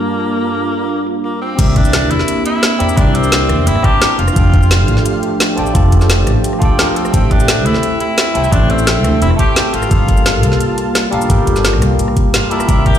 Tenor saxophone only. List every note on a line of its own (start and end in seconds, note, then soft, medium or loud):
0.00 1.07 A#3 medium
1.24 1.40 A#3 medium
1.41 1.78 C4 medium
1.76 2.12 D4 loud
2.11 2.45 E4 loud
2.46 2.99 E4 loud
2.98 3.16 D4 loud
3.15 3.68 C4 loud
3.67 3.86 E4 loud
3.84 4.18 G4 loud
4.19 5.54 F4 loud
6.79 6.98 A#3 medium
6.96 7.33 C4 medium
7.31 7.67 D4 loud
7.66 8.00 E4 loud
8.01 8.54 E4 loud
8.53 8.72 D4 loud
8.70 9.21 C4 loud
9.22 9.30 E4 loud
9.39 9.75 G4 loud
9.74 11.13 F4 loud
12.34 12.53 F4 medium
12.51 12.88 E4 medium
12.86 12.99 G4 loud